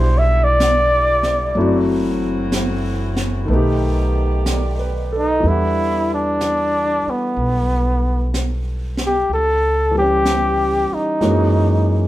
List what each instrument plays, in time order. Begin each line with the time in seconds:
Already playing: upright bass B1, saxophone section D3 G3 B3 E4, grand piano G3 B3 D4 E4 F#4, trumpet C5
0.18 trumpet E5
0.44 trumpet D5
0.60 brush sweep, snare, hi-hat pedal
1.23 snare
1.55 upright bass F#1, saxophone section E3 A3 C4 F#4, grand piano F#3 A3 C4 E4, brush sweep
1.60 grand piano F#4
2.52 brush sweep, snare, hi-hat pedal
3.16 snare
3.45 upright bass B1, grand piano D#3 A3, brush sweep
3.49 saxophone section D#3 B3 G4, grand piano B3 D#4
3.55 grand piano G4
4.46 grand piano D5, brush sweep, snare, hi-hat pedal
4.79 grand piano B4
5.12 grand piano A4
5.18 trumpet D#4
5.40 upright bass E2, grand piano E3 G3, brush sweep
5.46 grand piano B3 D4, trumpet E4
5.51 grand piano F#5
6.14 trumpet D4
6.41 brush sweep, snare, hi-hat pedal
7.07 trumpet B3, muted upright bass stroke
7.36 upright bass B1, brush sweep
8.34 brush sweep, snare, hi-hat pedal
8.97 snare
9.06 trumpet G4
9.29 upright bass C#2, brush sweep
9.34 trumpet A4
9.91 grand piano E3 G3
9.97 grand piano B3 C#4, trumpet G4
10.02 grand piano G4
10.25 brush sweep, snare, hi-hat pedal
10.91 trumpet D#4, muted upright bass stroke
11.21 upright bass F#2, grand piano E3 G#3 A#3 C#4 F#4, brush sweep, snare